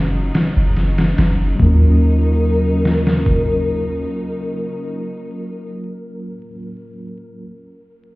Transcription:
0.00 0.31 F#1 loud
0.00 1.56 C#3 medium
0.00 1.57 F#3 medium
0.00 1.56 D#4 medium
0.35 snare loud
0.35 ride medium
0.57 1.14 F#1 loud
0.76 snare soft
0.76 ride medium
0.98 snare loud
0.98 ride medium
1.18 1.55 F#1 medium
1.18 snare loud
1.18 ride medium
1.55 6.23 F#3 medium
1.55 6.27 A#3 medium
1.60 4.06 D#2 medium
1.60 5.69 C#3 medium
1.60 5.69 F#3 medium
1.60 6.31 C#4 medium
1.60 5.69 D#4 medium
1.60 5.70 A#4 loud
1.60 kick loud
1.66 6.34 F4 medium
2.85 snare medium
3.07 snare medium
3.26 kick medium

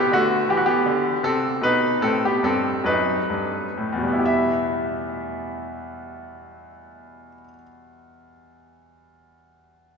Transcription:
0.00 0.12 B3 soft
0.00 0.13 G4 medium
0.12 0.40 D3 soft
0.12 0.47 A3 medium
0.12 0.48 F#4 medium
0.49 0.78 E3 soft
0.49 0.57 G4 medium
0.57 0.64 F#4 medium
0.66 1.19 B3 medium
0.66 1.23 G4 medium
0.86 1.15 D3 soft
1.23 1.53 C3 soft
1.23 1.60 C4 medium
1.23 1.62 A4 medium
1.61 1.93 B2 soft
1.61 2.00 D#4 medium
1.61 2.02 B4 medium
2.01 2.34 A2 soft
2.01 2.21 C4 medium
2.01 2.22 A4 medium
2.25 2.43 B3 soft
2.25 2.44 G4 medium
2.43 2.77 G2 soft
2.43 2.83 C4 medium
2.43 2.80 A4 medium
2.84 3.20 F#2 soft
2.84 4.20 D#4 medium
2.84 4.03 B4 medium
3.30 3.67 G2 soft
3.77 4.14 A2 soft
3.92 7.28 E2 soft
3.98 7.34 B2 soft
4.03 7.38 G3 soft
4.08 7.44 B3 soft
4.13 7.49 E4 soft
4.19 7.55 G4 soft
4.26 7.62 E5 medium

